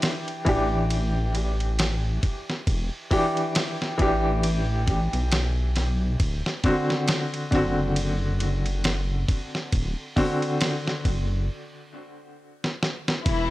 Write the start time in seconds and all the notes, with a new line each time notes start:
Already playing: E3 D4 G4
0.02 snare, ride
0.28 ride
0.45 A1 E3 D4 G4, kick, ride
0.90 ride
1.35 ride
1.60 ride
1.79 snare, ride
2.23 kick, ride
2.50 snare
2.67 E1, kick, ride
3.11 E3 D4 G4, kick, open hi-hat
3.37 ride
3.55 snare, ride
3.82 snare
3.98 A1 E3 D4 G4, kick, ride
4.43 ride
4.87 kick, ride
5.13 B1, ride
5.32 snare, ride
5.76 snare, ride
6.20 D1, kick, ride
6.46 snare
6.64 D3 C4 F#4, kick, ride
6.90 snare
7.08 snare, ride
7.34 ride
7.51 F#1 D3 C4 F#4, kick, ride
7.96 ride
8.40 ride
8.66 ride
8.84 snare, ride
9.29 kick, ride
9.55 snare
9.72 D1, kick, ride
10.16 D3 C4 F#4, kick, open hi-hat
10.42 ride
10.61 snare, ride
10.87 snare
11.05 F#1, kick, ride
12.64 snare
12.83 snare
13.08 snare
13.25 E1 E3 E4, kick, ride